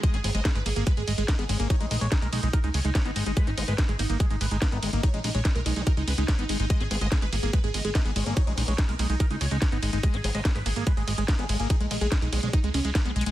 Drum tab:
RD |----x-------x-------x-------x---|----x-------x-------x-------x---|----x-------x-------x-------x---|----x-------x-------x-------x---|
HH |x-x-o-x-x-x-o-x-x-x-o-x-x-x-o-x-|x-x-o-x-x-x-o-x-x-x-o-x-x-x-o-x-|x-x-o-x-x-x-o-x-x-x-o-x-x-x-o-x-|x-x-o-x-x-x-o-x-x-x-o-x-x-x-o-x-|
SD |--------o---------------o-------|--------o---------------o-------|--------o---------------o-------|--------o---------------o-------|
BD |o-------o-------o-------o-------|o-------o-------o-------o-------|o-------o-------o-------o-------|o-------o-------o-------o-------|

RD |----x-------x-------x-------x---|----x-------x-------x-------x---|----x-------x-------x-------x---|----x-------x-------x-----------|
HH |x-x-o-x-x-x-o-x-x-x-o-x-x-x-o-x-|x-x-o-x-x-x-o-x-x-x-o-x-x-x-o-x-|x-x-o-x-x-x-o-x-x-x-o-x-x-x-o-x-|x-x-o-x-x-x-o-x-x-x-o-x-x-x-xxx-|
SD |--------o---------------o-------|--------o---------------o-------|--------o---------------o-------|--------o---------------o-------|
BD |o-------o-------o-------o-------|o-------o-------o-------o-------|o-------o-------o-------o-------|o-------o-------o-------o-------|